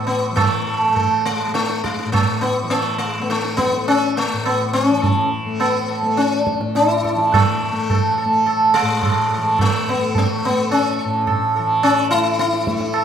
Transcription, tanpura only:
0.00 2.05 A2 medium
0.00 0.31 E3 medium
0.00 0.89 A3 medium
0.31 2.63 E3 medium
0.89 1.47 A3 medium
1.47 3.19 A3 soft
2.05 4.33 A2 medium
2.63 4.90 E3 medium
3.19 3.76 A3 medium
3.76 5.46 A3 medium
4.33 6.59 A2 medium
4.91 7.15 E3 medium
5.46 6.02 A3 medium
6.02 7.72 A3 medium
6.60 8.82 A2 medium
7.15 9.37 E3 medium
7.72 8.25 A3 medium
8.25 9.94 A3 medium
8.82 11.05 A2 medium
9.37 11.58 E3 medium
9.94 10.49 A3 medium
10.49 12.13 A3 medium
11.05 13.04 A2 medium
11.59 13.04 E3 medium
12.13 12.67 A3 medium
12.67 13.04 A3 medium

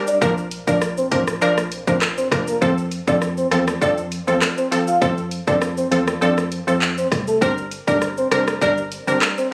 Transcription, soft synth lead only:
0.08 0.18 D5 medium
0.22 0.33 A#4 loud
0.68 0.78 D5 medium
0.97 1.08 C5 medium
1.12 1.23 C5 medium
1.42 1.53 D5 medium
1.87 1.98 C5 medium
2.17 2.28 C5 medium
2.48 2.58 A#4 medium
2.62 2.73 C5 loud
3.07 3.18 D5 medium
3.37 3.48 C5 medium
3.52 3.63 C5 medium
3.82 3.93 D5 medium
4.27 4.38 C5 medium
4.58 4.68 C5 medium
4.88 4.98 F5 medium
5.02 5.13 C5 loud
5.47 5.58 D5 medium
5.78 5.88 C5 medium
5.92 6.03 C5 medium
6.22 6.34 D5 medium
6.68 6.78 C5 medium
6.98 7.08 C5 medium
7.28 7.38 A4 medium
7.42 7.54 C5 loud
7.88 7.98 D5 medium
8.18 8.28 C5 medium
8.32 8.44 C5 medium
8.62 8.74 D5 medium
9.08 9.18 C5 medium
9.38 9.48 C5 medium

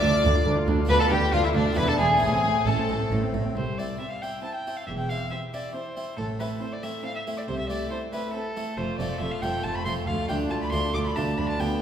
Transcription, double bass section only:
0.02 0.10 D2 medium
0.24 0.32 D2 medium
0.46 0.54 D2 medium
0.67 0.75 D2 medium
0.89 0.97 D2 medium
1.11 1.19 D2 medium
1.33 1.41 D2 medium
1.54 1.62 D2 medium
1.77 1.85 E1 medium
1.99 2.07 E1 medium
2.22 2.30 A1 medium
2.44 2.52 A1 medium
2.67 2.75 A1 medium
2.89 2.97 A1 medium
3.11 3.19 A1 medium
3.34 3.42 A1 medium
3.56 3.91 C2 soft
4.87 5.22 E1 medium
6.18 6.52 A1 soft
7.48 7.82 C2 medium
8.78 8.86 F1 soft
8.99 9.07 F1 soft
9.21 9.29 F1 soft
9.42 9.50 F1 medium
9.64 9.72 F1 medium
9.86 9.94 F1 soft
10.08 10.16 D2 medium
10.30 10.38 D2 medium
10.51 10.59 D2 medium
10.72 10.80 D2 medium
10.95 11.03 D2 medium
11.16 11.24 D2 medium
11.38 11.46 D2 medium
11.59 11.67 D2 soft

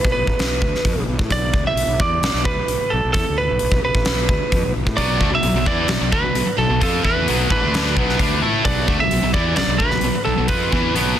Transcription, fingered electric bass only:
0.04 0.15 B1 medium
0.16 0.27 B1 medium
0.27 0.38 A1 medium
0.39 0.60 B1 medium
0.61 0.72 D2 medium
0.73 muted fingered electric bass stroke soft
0.86 0.95 F2 medium
0.96 1.06 B1 medium
1.08 1.18 B1 medium
1.19 1.29 A2 medium
1.31 1.52 B1 medium
1.54 1.64 D2 loud
1.65 1.74 B1 medium
1.75 1.86 B1 medium
1.87 1.98 B1 medium
2.00 2.20 E2 medium
2.21 2.32 B1 medium
2.34 2.44 B1 medium
2.45 2.56 D2 loud
2.57 2.67 B1 medium
2.67 2.78 B1 medium
2.80 muted fingered electric bass stroke soft
2.93 3.02 B1 medium
3.05 3.13 B1 medium
3.14 3.24 E2 medium
3.28 3.48 D2 medium
3.51 3.60 B1 medium
3.62 3.71 B1 medium
3.72 3.82 B1 medium
3.84 3.94 B1 medium
3.95 4.05 A1 medium
4.07 4.28 B1 medium
4.29 4.39 D2 medium
4.43 muted fingered electric bass stroke soft
4.53 4.63 F2 medium
4.64 4.74 B1 medium
4.76 4.86 B1 medium
4.86 4.97 A2 medium
4.99 5.19 B1 medium
5.21 5.31 D2 medium
5.32 5.42 B1 medium
5.42 5.53 B1 medium
5.54 5.65 B1 medium
5.66 5.87 E2 medium
5.88 5.99 B1 medium
6.01 6.11 B1 medium
6.12 6.23 D2 loud
6.24 6.34 B1 medium
6.34 6.45 B1 medium
6.46 muted fingered electric bass stroke soft
6.58 6.68 B1 medium
6.70 6.80 B1 medium
6.82 7.03 F2 medium
7.04 7.25 E2 medium
7.29 7.50 B1 medium
7.51 7.61 A1 medium
7.62 7.94 D2 medium
7.97 8.18 B1 medium
8.19 8.40 D2 medium
8.41 8.63 A2 medium
8.65 8.86 B1 medium
8.88 8.99 D2 loud
8.99 9.10 B1 medium
9.12 9.22 B1 medium
9.23 9.33 B1 medium
9.34 9.55 E2 medium
9.57 9.67 B1 medium
9.67 9.78 B1 medium
9.79 9.90 D2 medium
9.91 10.00 B1 medium
10.01 10.12 B1 medium
10.15 muted fingered electric bass stroke soft
10.27 10.37 B1 medium
10.38 10.48 B1 medium
10.49 10.70 F2 medium
10.72 10.94 E2 loud
10.95 11.16 B1 medium

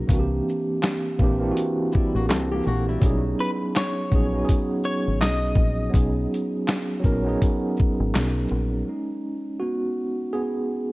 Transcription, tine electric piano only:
0.00 0.12 F#3 medium
0.00 0.09 A#3 medium
0.00 0.12 C#4 medium
0.00 0.12 D#4 medium
0.00 0.11 F#4 medium
0.00 0.11 G#4 medium
0.08 1.11 E3 medium
0.08 1.12 A#3 medium
0.08 1.12 C4 medium
0.08 1.13 D4 medium
0.13 0.19 F#4 medium
0.20 1.17 G4 medium
1.19 1.38 E3 medium
1.19 1.39 A#3 medium
1.19 1.40 C4 medium
1.23 1.41 D4 medium
1.23 1.42 G4 medium
1.39 2.72 E3 medium
1.39 2.73 A#3 medium
1.39 2.73 C4 medium
1.39 2.74 D4 medium
1.44 1.48 E4 medium
1.51 2.78 F#4 medium
3.00 4.04 F#3 medium
3.00 4.05 B3 medium
3.00 4.05 C#4 medium
3.04 4.06 D#4 medium
3.04 4.07 G#4 medium
4.10 4.31 F#3 medium
4.10 4.32 B3 medium
4.10 4.33 C#4 medium
4.10 4.33 D#4 medium
4.15 4.33 G#4 medium
4.33 5.66 F#3 medium
4.33 5.66 B3 medium
4.33 5.67 C#4 medium
4.33 5.67 D#4 medium
4.38 4.41 F#4 medium
4.45 5.71 G#4 medium
5.89 6.95 F#3 medium
5.89 6.95 B3 medium
5.89 6.96 C#4 medium
5.89 6.96 D#4 medium
5.94 6.97 G#4 medium
7.00 7.22 F#3 medium
7.00 7.23 B3 medium
7.00 7.24 C#4 medium
7.04 7.24 D#4 medium
7.04 7.25 A#4 loud
7.23 8.57 F#3 medium
7.23 8.58 B3 medium
7.23 8.58 C#4 medium
7.27 8.59 D#4 medium
7.27 8.60 G#4 medium
8.87 10.92 G#3 soft
8.87 10.92 C#4 soft
8.87 10.92 D#4 medium
9.60 10.30 B3 medium
9.60 10.29 F#4 medium
10.33 10.92 B3 medium
10.33 10.92 G#4 medium

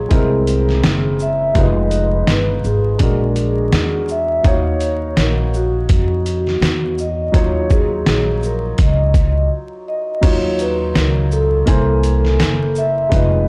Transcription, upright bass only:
0.11 0.80 C2 medium
0.84 1.52 F#1 medium
1.56 2.24 F1 loud
2.28 2.62 G1 medium
2.64 2.98 G#1 medium
3.00 3.69 A#1 loud
3.72 4.41 E2 medium
4.45 5.13 D#2 loud
5.17 5.86 A#1 medium
5.90 6.58 F2 loud
6.61 7.30 E2 medium
7.34 8.03 D#2 loud
8.07 8.75 A#1 medium
8.79 9.47 C#2 medium
10.23 10.92 D#2 medium
10.96 11.64 C#2 medium
11.68 12.36 C2 medium
12.41 13.09 F#1 medium
13.12 13.48 F1 medium

